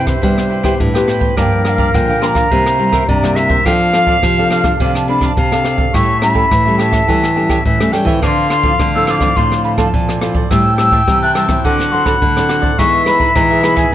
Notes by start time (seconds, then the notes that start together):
Already playing: G2 C3 E4 G4 C5
0.06 B4 C5 E5 G5, kick, cross-stick, closed hi-hat
0.22 C3 G3 B3 E4 G4 B4 C5 G5, kick, closed hi-hat
0.38 cross-stick
0.50 E4 B4 C5 G5, closed hi-hat
0.63 B3 E4 G4 B4 C5 G5, kick, cross-stick
0.80 G2 A2 B4, kick, closed hi-hat
0.94 B3 E4 G4 B4 C5 G5, cross-stick, closed hi-hat
1.07 E4 B4 C5 G5, cross-stick, closed hi-hat
1.20 B4 C5 G5, kick, closed hi-hat
1.36 G2 F3 A#3 D4 G4 A#4 D5 F5 A5, kick, cross-stick, closed hi-hat
1.43 G5
1.52 closed hi-hat
1.64 G4 A#4 D5 F5 G5, cross-stick, closed hi-hat
1.69 F5
1.78 G4 A#4 D5 F5, kick
1.94 A#2 D3 F3 A#3 D4 G5, kick, cross-stick, closed hi-hat
2.09 A#4 D5 F5, closed hi-hat
2.21 F3 A#3 D4 G4 A#4 D5 F5 C6, cross-stick, closed hi-hat
2.26 A#5
2.35 A#4 D5 F5, kick, cross-stick, closed hi-hat
2.51 C3 G3 A#3 E4 A#4 C5 E5, kick, closed hi-hat
2.66 cross-stick
2.79 G3 A#3 E4 A#4 C5 E5, closed hi-hat
2.92 E4 A#4 C5 E5, kick, cross-stick
3.08 G2 C3 D5, kick, closed hi-hat
3.23 G3 A#3 E4 A#4 C5 E5, cross-stick
3.35 E4 A#4 C5 E5, cross-stick, closed hi-hat
3.49 A#4 C5 E5, kick
3.65 F3 C4 D4 A4 D5 F5 G5, kick, cross-stick, closed hi-hat
3.93 C4 D4 A4 D5 F5, cross-stick, closed hi-hat
4.07 D4 A4 D5 F5, kick
4.23 C3 F3, kick, cross-stick, closed hi-hat
4.38 C4 D4 A4 D5 F5
4.51 D4 A4 D5 F5, cross-stick, closed hi-hat
4.64 C4 D4 A4 D5 F5, kick, cross-stick, closed hi-hat
4.80 C3 F3 C4 D4 A4 D5 F5, kick, closed hi-hat
4.95 A5, cross-stick
5.08 C4 D4 A4 D5 F5 B5, closed hi-hat
5.21 D4 A4 D5 F5 B5, kick, cross-stick
5.26 A5
5.37 C3 F5, kick, closed hi-hat
5.52 C4 D4 A4 D5 F5, cross-stick, closed hi-hat
5.64 D4 A4 D5 F5, cross-stick, closed hi-hat
5.78 A4 D5 F5, kick, closed hi-hat
5.94 A2 G3 C#4 E4 G4 A4 C#5 E5 C#6, kick, cross-stick, closed hi-hat
6.09 closed hi-hat
6.21 G3 C#4 E4 G4 A4 C#5 E5 B5, cross-stick, closed hi-hat
6.34 G4 A4 C#5 E5, kick
6.51 A2 E3, kick, cross-stick, closed hi-hat
6.65 G3 C#4 E4 A4 C#5 E5, closed hi-hat
6.78 G4 A4 C#5 E5 A5, cross-stick, closed hi-hat
6.91 A4 C#5 E5, kick, cross-stick, closed hi-hat
7.07 A2 E3 G3 C#4 E4 G4 A4 C#5 E5, kick, closed hi-hat
7.24 cross-stick
7.36 G3 C#4 E4 G4 A4 C#5 E5, closed hi-hat
7.49 G4 A4 C#5 E5, kick, cross-stick
7.65 A2 E3 E5, kick, closed hi-hat
7.80 G3 A3 C#4 E4 A4 C#5 E5, cross-stick
7.92 G3 G4 A4 C#5 E5 G5, cross-stick, closed hi-hat
8.05 E3 F3 C4 E4 A4 C#5 E5, kick
8.22 D3 F4 A4 C5 D5 F5 D6, kick, cross-stick, closed hi-hat
8.27 C6
8.50 F4 A4 C5 D5 C6, cross-stick, closed hi-hat
8.63 F3 C4 E4 F4 A4 C5 D5, kick
8.79 A2 D3, kick, cross-stick, closed hi-hat
8.94 F3 C4 E4 A4 C5 D5 E6
9.07 F4 A4 C5 D5 E6, cross-stick, closed hi-hat
9.11 D6
9.20 F3 C4 E4 A4 C5 D5, kick, cross-stick, closed hi-hat
9.36 A2 D3 F3 C4 F4 A4 C5 D5 C6, kick, closed hi-hat
9.52 cross-stick
9.64 F4 A4 C5 D5 B5, closed hi-hat
9.77 F3 C4 F4 A4 C5 D5 A5, kick, cross-stick
9.94 A#2, kick, closed hi-hat
10.08 A4 C5 D5, cross-stick, closed hi-hat
10.21 F3 C4 E4 F4 A4 C5 D5, cross-stick, closed hi-hat
10.34 A4 C5 D5, kick, closed hi-hat
10.50 A2 G3 C4 E4 G4 C5 E5 G5 A5 E6, kick, cross-stick, closed hi-hat
10.66 closed hi-hat
10.78 G3 C4 E4 G4 C5 E5 A5 E6, cross-stick, closed hi-hat
10.92 G4 C5 E5 A5, kick
11.08 C3 E3 G3 C4 E4, kick, cross-stick, closed hi-hat
11.22 C5 E5 A5 F#6, closed hi-hat
11.35 G3 C4 E4 G4 C5 E5 A5 E6, cross-stick, closed hi-hat
11.49 F#3 C4 E4 C5 E5 A5, kick, cross-stick, closed hi-hat
11.64 D3 F#4 A4 C5 D5 F#5 D6, kick, closed hi-hat
11.80 cross-stick
11.92 F#3 C4 E4 F#4 A4 C5 D5 C6, closed hi-hat
12.05 F#4 A4 C5 D5 B5, kick, cross-stick
12.22 A2 D3, kick, closed hi-hat
12.37 F#3 C4 E4 A4 C5 D5, cross-stick
12.49 F#4 A4 C5 D5, cross-stick, closed hi-hat
12.62 A4 C5 D5, kick
12.78 E3 G#3 B3 D#4 G#4 B4 E5 C#6, kick, cross-stick, closed hi-hat
13.06 G#3 B3 D#4 G#4 B4 E5 B5, cross-stick, closed hi-hat
13.19 D#4 G#4 B4 E5, kick
13.36 B2 E3 G#3 B3 D#4 A#5, kick, cross-stick, closed hi-hat
13.50 G#4 B4 E5
13.63 G#3 B3 D#4 G#4 B4 E5 B5, cross-stick, closed hi-hat
13.76 G#4 B4 E5 G#5, kick, cross-stick, closed hi-hat